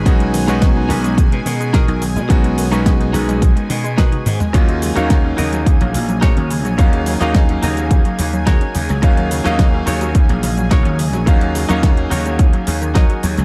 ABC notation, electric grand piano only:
X:1
M:4/4
L:1/16
Q:1/4=107
K:Ebm
V:1 name="Electric grand piano"
[^G,=B,D^D^F]3 [G,B,_D^DF]12- [G,B,_D^DF] | [^G,=B,D^D^F]3 [G,B,_D^DF]12- [G,B,_D^DF] | [G,B,DEF]3 [G,B,DEf]12- [G,B,DEf] | [G,B,DEf]3 [G,B,DEf]12- [G,B,DEf] |
[G,B,DEf]3 [G,B,DEf]12- [G,B,DEf] | [G,B,DEf]3 [G,B,DEf]12- [G,B,DEf] |]